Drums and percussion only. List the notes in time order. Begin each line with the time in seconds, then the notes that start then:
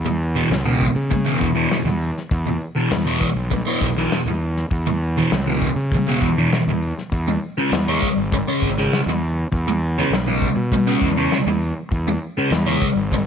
0.21 open hi-hat
0.51 snare, open hi-hat
0.82 kick, open hi-hat
1.12 kick, open hi-hat
1.41 kick, open hi-hat
1.70 snare, open hi-hat
1.87 snare
2.01 open hi-hat
2.18 snare
2.31 kick, open hi-hat
2.61 open hi-hat
2.91 snare, open hi-hat
3.21 kick, open hi-hat
3.51 kick, open hi-hat
3.81 kick, open hi-hat
4.11 snare, open hi-hat
4.41 open hi-hat
4.57 snare
4.71 kick, open hi-hat
5.02 open hi-hat
5.31 snare, open hi-hat
5.61 kick, open hi-hat
5.92 kick, open hi-hat
6.22 kick, open hi-hat
6.52 snare, open hi-hat
6.68 snare
6.82 open hi-hat
6.98 snare
7.12 kick, open hi-hat
7.42 open hi-hat
7.72 snare, open hi-hat
8.02 kick, open hi-hat
8.32 kick, open hi-hat
8.62 kick, open hi-hat
8.92 snare, open hi-hat
9.09 snare
9.23 open hi-hat
9.52 kick, open hi-hat
9.83 open hi-hat
10.12 snare, open hi-hat
10.42 kick, open hi-hat
10.72 kick, open hi-hat
11.02 kick, open hi-hat
11.31 snare, open hi-hat
11.62 open hi-hat
11.91 kick, open hi-hat
12.22 open hi-hat
12.51 snare, open hi-hat
12.82 kick, open hi-hat
13.12 kick, open hi-hat